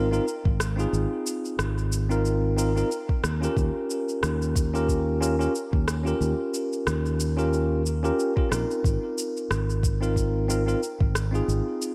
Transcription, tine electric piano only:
0.11 0.25 C4 medium
0.11 0.25 D#4 medium
0.11 0.25 F4 medium
0.11 0.26 A#4 medium
0.76 2.05 C4 medium
0.76 2.05 D#4 medium
0.76 2.06 F4 medium
0.80 2.07 G#4 medium
2.09 2.54 C4 medium
2.09 2.54 D#4 medium
2.09 2.55 F4 medium
2.09 2.55 A#4 medium
2.57 2.71 C4 medium
2.57 2.72 D#4 medium
2.57 2.72 F4 medium
2.57 2.72 A#4 medium
2.76 2.89 C4 medium
2.76 2.89 D#4 medium
2.76 2.89 F4 medium
2.76 2.90 A#4 medium
3.41 4.69 C#4 medium
3.41 4.70 F4 medium
3.41 4.70 G4 medium
3.45 4.71 A#4 medium
4.74 5.18 C#4 medium
4.74 5.18 F4 medium
4.74 5.19 G4 medium
4.74 5.19 A#4 loud
5.21 5.35 C#4 medium
5.21 5.35 F4 medium
5.21 5.36 G4 medium
5.21 5.36 A#4 medium
5.39 5.52 C#4 medium
5.39 5.52 F4 medium
5.39 5.53 G4 medium
5.39 5.53 A#4 medium
6.04 7.32 C#4 medium
6.04 7.33 F4 medium
6.04 7.34 G4 medium
6.08 7.34 A#4 medium
7.37 7.81 C#4 medium
7.37 7.82 F4 medium
7.37 7.82 G4 medium
7.37 7.82 A#4 medium
8.03 8.32 C#4 medium
8.03 8.32 F4 medium
8.03 8.33 G4 medium
8.03 8.33 A#4 loud
8.36 8.47 C#4 medium
8.36 8.48 F4 medium
8.36 8.48 G4 medium
8.36 8.49 A#4 medium
8.49 9.96 C4 medium
8.49 9.97 D#4 medium
8.49 9.98 F4 medium
8.53 9.98 A#4 medium
10.01 10.45 C4 medium
10.01 10.46 D#4 medium
10.01 10.46 F4 medium
10.01 10.46 A#4 medium
10.48 10.63 C4 medium
10.48 10.63 D#4 medium
10.48 10.64 F4 medium
10.48 10.64 A#4 medium
10.66 10.80 C4 medium
10.66 10.80 D#4 medium
10.66 10.80 F4 medium
10.66 10.80 A#4 medium
11.31 11.95 C4 medium
11.31 11.95 D#4 medium
11.31 11.95 F4 medium
11.35 11.95 G#4 medium

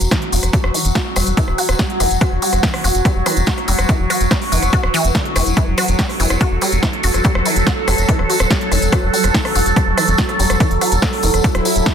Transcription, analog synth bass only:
0.01 0.07 E1 medium
0.32 0.39 E1 medium
0.43 0.49 E1 medium
0.64 0.70 E1 medium
0.85 0.91 E1 medium
1.16 1.22 E1 medium
1.27 1.33 E1 medium
1.48 1.54 D1 medium
1.69 1.75 D1 medium
2.00 2.06 E1 medium
2.11 2.17 E1 medium
2.32 2.38 E1 medium
2.53 2.59 E1 medium
2.84 2.90 E1 medium
2.95 3.01 E1 medium
3.16 3.22 E1 medium
3.37 3.43 E1 medium
3.68 3.74 E1 medium
3.79 3.85 E1 medium
4.00 4.06 E1 medium
4.21 4.27 E1 medium
4.52 4.58 E1 medium
4.62 4.69 E1 medium
4.83 4.90 D1 medium
5.04 5.11 E1 medium
5.36 5.42 E1 loud
5.46 5.53 E1 medium
5.67 5.74 E1 medium
5.88 5.95 E1 medium
6.20 6.26 E1 medium
6.30 6.36 E1 medium
6.51 6.57 E1 medium
6.72 6.78 E1 medium
7.04 7.10 E1 loud
7.14 7.20 E1 medium
7.35 7.41 E1 medium
7.56 7.62 E1 medium
7.88 7.94 E1 medium
7.98 8.04 E1 medium
8.19 8.25 D1 medium
8.40 8.46 D1 medium
8.72 8.78 E1 medium
8.82 8.88 E1 medium
9.03 9.09 E1 medium
9.24 9.30 E1 medium
9.56 9.62 E1 medium
9.66 9.72 E1 medium
9.87 9.93 E1 medium
10.08 10.14 E1 medium
10.39 10.46 E1 loud
10.50 10.56 E1 medium
10.71 10.77 E1 medium
10.92 10.98 E1 medium
11.23 11.29 E1 medium
11.34 11.40 E1 medium
11.55 11.61 D1 medium
11.76 11.82 D1 medium

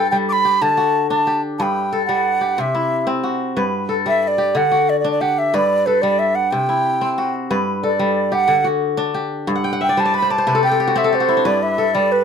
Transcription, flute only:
0.11 0.17 G5 medium
0.29 0.63 B5 loud
0.29 0.33 D6 medium
0.62 1.10 A5 medium
1.10 1.41 A5 medium
1.59 2.05 G5 medium
1.59 1.63 A5 medium
2.06 2.57 F#5 medium
2.57 3.07 E5 medium
2.57 2.62 F#5 medium
4.08 4.23 E5 medium
4.23 4.29 E5 medium
4.28 4.58 D5 medium
4.57 4.91 F#5 medium
4.90 4.99 D5 medium
5.00 5.10 D5 medium
5.11 5.23 D5 medium
5.21 5.40 F#5 medium
5.38 5.56 E5 medium
5.55 5.88 D5 medium
5.86 6.03 B4 medium
6.02 6.21 D5 medium
6.19 6.37 E5 medium
6.35 6.53 F#5 medium
6.51 7.34 G5 medium
7.83 8.35 D5 medium
8.33 8.66 F#5 loud
9.83 10.02 G5 medium
10.00 10.15 A5 medium
10.17 10.33 B5 medium
10.31 10.64 A5 medium
10.64 10.99 G5 medium
10.98 11.16 E5 medium
11.15 11.48 C5 medium
11.47 11.64 D5 medium
11.63 11.96 E5 medium
11.94 12.13 D5 medium
12.12 12.24 B4 medium

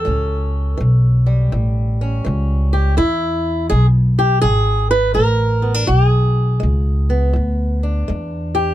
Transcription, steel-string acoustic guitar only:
0.00 2.72 A4 medium
0.05 0.73 A2 medium
0.05 2.00 C#4 soft
0.77 1.46 E3 medium
1.26 2.97 G3 soft
1.52 2.20 E2 medium
2.01 2.95 C#4 soft
2.25 2.92 E3 medium
2.73 2.97 G4 medium
2.97 3.65 E2 medium
2.97 3.69 E4 medium
3.70 4.38 G#3 medium
3.70 3.86 G#4 medium
4.19 4.41 G4 medium
4.42 5.11 E2 medium
4.42 4.90 G#4 loud
4.91 5.14 B4 medium
5.14 5.83 G#3 medium
5.14 5.87 A#4 loud
5.62 5.74 B3 soft
5.74 5.88 D4 soft
5.87 6.56 E2 medium
5.87 6.07 G4 medium
6.07 7.34 G#4 medium
6.60 7.29 G#3 medium
7.10 8.74 B3 soft
7.33 8.02 E2 medium
7.83 8.74 D4 soft
8.08 8.74 G#3 medium
8.55 8.74 G4 medium

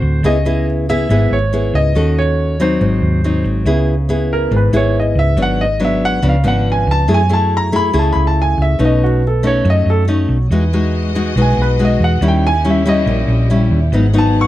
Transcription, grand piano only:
0.00 0.27 C5 medium
0.26 0.65 D#5 medium
0.90 1.33 E5 medium
1.33 1.76 C#5 medium
1.75 2.18 D#5 medium
2.19 2.61 C#5 medium
2.62 3.42 C5 medium
4.33 4.52 A#4 medium
4.56 4.75 B4 medium
4.76 4.95 C#5 medium
5.00 5.18 D#5 medium
5.19 5.38 E5 medium
5.42 5.61 F#5 medium
5.61 5.81 D#5 medium
5.85 6.03 E5 medium
6.05 6.24 F#5 medium
6.29 6.46 F5 medium
6.48 6.67 F#5 medium
6.72 6.89 G#5 medium
6.91 7.10 A5 medium
7.14 7.32 G#5 medium
7.33 7.52 A5 medium
7.57 7.75 A#5 medium
7.76 7.95 B5 medium
7.99 8.10 A5 medium
8.13 8.24 B5 medium
8.27 8.38 A5 medium
8.42 8.60 G#5 medium
8.62 8.81 E5 medium
8.85 9.03 D#5 medium
9.04 9.23 F#4 soft
9.27 9.45 A4 medium
9.47 9.66 C#5 medium
9.70 9.88 D#5 medium
9.90 10.02 A4 medium
11.42 11.59 G#5 medium
11.62 11.80 B4 medium
11.85 12.02 D#5 medium
12.04 12.23 F#5 medium
12.28 12.45 G5 medium
12.47 12.65 G#5 medium
12.70 12.88 E5 medium
12.89 13.47 D#5 medium
14.18 14.37 A5 medium
14.41 14.47 C#6 medium

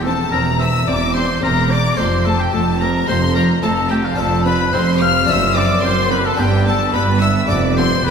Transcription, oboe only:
0.03 0.31 A4 medium
0.31 0.44 A#4 medium
0.59 0.86 E5 loud
0.87 1.00 D5 loud
1.14 1.41 C5 medium
1.43 1.72 A#4 loud
1.71 1.99 D5 loud
1.98 2.26 C5 medium
2.25 2.41 A4 medium
2.39 2.53 G4 medium
2.53 2.65 A4 medium
2.82 3.08 A#4 loud
3.08 3.21 C5 loud
3.36 3.48 A#4 medium
3.63 3.90 A4 loud
3.91 4.06 G4 loud
4.05 4.18 F4 medium
4.19 4.45 A4 loud
4.46 4.75 B4 loud
4.73 5.01 C5 loud
5.01 5.30 F5 loud
5.29 5.58 E5 loud
5.57 5.84 D5 loud
5.85 6.13 C5 loud
6.12 6.27 B4 loud
6.26 6.41 A4 loud
6.39 6.67 G4 loud
6.68 6.96 A4 loud
6.94 7.21 B4 loud
7.22 7.48 E5 loud
7.49 7.75 D5 medium
7.76 8.05 C5 loud
8.04 8.11 B4 loud

